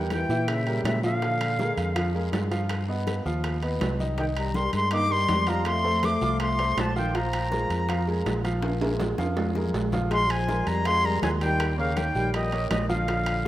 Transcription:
Already playing: fingered electric bass E2, upright piano G3 G4 A#4
0.10 trombone E3, flute G5, high bongo, high conga, high timbale, low timbale, short guiro
0.29 fingered electric bass A#2, upright piano E3 E4 E5, high bongo, high conga, short guiro
0.48 trombone C#3, flute E5, high bongo, high conga, high timbale, long guiro
0.67 upright piano G3 G4 A#4, high bongo, high conga, high timbale
0.84 fingered electric bass A#2, trombone C#3, flute E5, high bongo, low bongo, high conga, high timbale, low timbale, short guiro
1.03 trombone D3, upright piano F3 F4 F5, flute F5, high bongo, high conga, short guiro
1.22 upright piano F3 F4 F5, high bongo, high timbale, long guiro
1.40 high conga, high timbale
1.59 upright piano G#3 G#4 A#4, high bongo, high conga, low timbale, short guiro
1.77 fingered electric bass F2, high bongo, high timbale, short guiro
1.95 upright piano F3 F4 F5, high bongo, high timbale, long guiro
2.14 upright piano G#3 G#4 A#4, high bongo, high conga
2.32 fingered electric bass G2, high bongo, low bongo, high conga, high timbale, low timbale, short guiro
2.51 upright piano F3 F4 F5, high bongo, high conga, high timbale, short guiro
2.69 high bongo, high conga, high timbale, long guiro
2.88 upright piano B3 B4 D#5, high conga
3.07 high bongo, high conga, high timbale, low timbale, short guiro
3.25 fingered electric bass D#2, upright piano F3 F4 F5, high bongo, short guiro
3.44 high bongo, high conga, high timbale, long guiro
3.62 upright piano B3 B4 D#5, high bongo, high conga, high timbale
3.81 fingered electric bass C2, high bongo, low bongo, high conga, high timbale, low timbale, short guiro
3.99 upright piano D#3 D#4 D#5, high bongo, high conga, short guiro
4.17 trombone D#3, upright piano D#3 D#4 D#5, flute G5, high bongo, high conga, high timbale, long guiro
4.36 trombone G3, flute A#5, high conga, high timbale
4.54 trombone G3, upright piano G3 G4 A#4, flute C6, high bongo, high conga, low timbale, short guiro
4.73 fingered electric bass G2, trombone G#3, flute C6, high bongo, high conga, high timbale, short guiro
4.91 upright piano D#3 D#4 D#5, trombone A#3, flute D6, high bongo, high conga, high timbale, long guiro
5.10 trombone G3, upright piano G3 G4 A#4, flute C6, high bongo
5.28 fingered electric bass F2, high bongo, low bongo, high conga, high timbale, low timbale, short guiro
5.46 upright piano F3 F4 F5, trombone G3, flute A#5, high bongo, high timbale, short guiro
5.65 trombone A3, flute C6, high bongo, high timbale, long guiro
5.84 upright piano A3 A4 C5, high conga
6.03 trombone A3, flute D6, high bongo, high conga, high timbale, low timbale, short guiro
6.21 fingered electric bass C2, upright piano F3 F4 F5, high bongo, high conga, short guiro
6.39 trombone A3, flute C6, high bongo, high conga, high timbale, long guiro
6.59 upright piano A3 A4 C5, high bongo, high conga, high timbale
6.77 fingered electric bass A#1, trombone F3, flute A5, high bongo, low bongo, high conga, high timbale, low timbale, short guiro
6.96 trombone D#3, upright piano F3 F4 F5, flute G5, high bongo, short guiro
7.15 upright piano F3 F4 F5, trombone F3, flute A#5, high bongo, high timbale, long guiro
7.33 high conga, high timbale
7.51 upright piano G#3 G#4 A#4, high bongo, high conga, low timbale, short guiro
7.70 fingered electric bass F2, high bongo, high timbale, short guiro
7.88 upright piano F3 F4 F5, high bongo, high timbale, long guiro
8.07 upright piano G#3 G#4 A#4, high bongo, high conga
8.26 fingered electric bass A#1, high bongo, low bongo, high conga, high timbale, low timbale, short guiro
8.44 upright piano F3 F4 F5, high bongo, high timbale, short guiro
8.62 high bongo, high conga, high timbale, long guiro
8.81 upright piano G#3 G#4 A#4, high timbale
9.00 high bongo, high conga, low timbale, short guiro
9.18 fingered electric bass F2, upright piano F3 F4 F5, high bongo, high conga, high timbale, short guiro
9.37 high bongo, low timbale, long guiro
9.55 upright piano G#3 G#4 A#4, high bongo, high conga
9.68 high conga
9.74 fingered electric bass A#1, low timbale, short guiro
9.92 upright piano F3 F4 F5, low bongo, low conga, low timbale, short guiro
10.10 upright piano F3 F4 F5, trombone G#3, flute C6, high bongo, high conga, high timbale, long guiro
10.29 trombone F3, flute G#5, high conga, high timbale
10.48 upright piano G#3 G#4 A#4, high bongo, high conga, low timbale, short guiro
10.67 fingered electric bass F2, trombone G3, flute A#5, high bongo, high timbale, short guiro
10.85 upright piano F3 F4 F5, trombone G#3, flute C6, high bongo, high timbale, long guiro
11.02 trombone G3, upright piano G#3 G#4 A#4, flute A#5, high bongo, high conga
11.21 fingered electric bass D#2, trombone F3, flute G#5, high bongo, low bongo, high conga, high timbale, low timbale, short guiro
11.40 trombone D#3, upright piano G3 G4 G5, flute G5, high bongo, high timbale, short guiro
11.60 high bongo, high timbale, long guiro
11.77 trombone C#3, upright piano A#3 A#4 C#5, flute F5, high conga
11.96 trombone D#3, flute G5, high bongo, high conga, high timbale, low timbale, short guiro
12.15 fingered electric bass A#1, upright piano G3 G4 G5, high bongo, high conga, short guiro
12.32 trombone A#2, flute D#5, high bongo, high timbale, long guiro
12.52 upright piano A#3 A#4 C#5, high bongo, high conga, high timbale
12.71 fingered electric bass A#1, trombone A#2, flute D#5, high bongo, low bongo, high conga, high timbale, low timbale, short guiro
12.89 trombone D3, upright piano F3 F4 F5, flute F5, high bongo, high conga, short guiro
13.08 upright piano F3 F4 F5, high bongo, high timbale, long guiro
13.26 high conga, high timbale

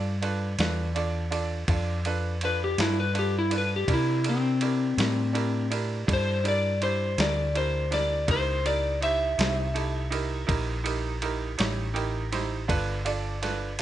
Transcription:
Already playing: fingered electric bass G2, upright piano D4 F4 A4 D5
0.22 upright piano D4 F4 A4 B4, ride
0.59 fingered electric bass E2, upright piano D4 F4 A4 B4, snare, ride
0.95 upright piano D4 F4 A4 D5, ride
1.31 upright piano D4 F4 A4 D5, ride
1.68 fingered electric bass F2, upright piano D4 F4 A4 D5, kick, ride
2.05 upright piano D4 F4 A4 B4, ride
2.41 upright piano D4 F4 A4 B4, electric slide guitar B4, ride
2.64 electric slide guitar G4
2.78 fingered electric bass G2, upright piano D4 F4 A4 B4, electric slide guitar E4, snare, ride
3.00 electric slide guitar B4
3.13 upright piano D4 F4 A4 B4, ride
3.19 electric slide guitar G4
3.38 electric slide guitar E4
3.50 upright piano D4 F4 A4 B4, ride
3.58 electric slide guitar B4
3.76 electric slide guitar G4
3.88 fingered electric bass C3, upright piano D4 E4 G4 A#4, kick, ride
3.94 electric slide guitar E4
4.24 upright piano D4 E4 G4 A#4, ride
4.29 electric slide guitar C4
4.61 upright piano D4 E4 G4 A#4, ride
4.98 fingered electric bass A2, upright piano D4 E4 G4 A#4, snare, ride
5.33 upright piano D4 E4 G4 A#4, ride
5.70 upright piano D4 E4 G4 A#4, ride
6.07 fingered electric bass G2, upright piano D4 E4 G4 A4, kick, ride
6.13 electric slide guitar C5
6.44 upright piano D4 E4 G4 A#4, ride
6.48 electric slide guitar D5
6.82 upright piano D4 E4 G4 C5, electric slide guitar C5, ride
7.18 fingered electric bass D2, upright piano D4 E4 G4 A#4, electric slide guitar D5, snare, ride
7.54 upright piano D4 E4 G4 A#4, electric slide guitar C5, ride
7.91 upright piano D4 E4 G4 A#4, electric slide guitar D5, snare, ride
8.28 fingered electric bass C#2, upright piano D#4 E4 G4 A#4, electric slide guitar C5, kick, ride
8.65 upright piano D#4 E4 G4 A#4, electric slide guitar D5, ride
9.01 upright piano D#4 E4 G4 C5, electric slide guitar E5, ride
9.38 fingered electric bass C2, upright piano D#4 E4 G4 C5, snare, ride
9.74 upright piano D#4 E4 G4 A4, ride
10.10 upright piano D#4 E4 G4 A#4, ride
10.47 fingered electric bass A#1, upright piano D#4 E4 G4 A#4, kick, ride
10.84 upright piano D#4 E4 G4 A#4, ride
11.22 upright piano D#4 E4 G4 A#4, ride
11.58 fingered electric bass A1, upright piano D#4 E4 G4 C#5, snare, ride
11.94 upright piano D#4 E4 G4 A#4 G5, ride
12.32 upright piano D#4 E4 G4 C5 A#5, snare, ride
12.68 fingered electric bass G1, upright piano D4 F4 A4 B4, kick, ride
13.05 upright piano D4 F4 A4 D5, ride
13.42 upright piano D4 F4 A4 B4, snare, ride

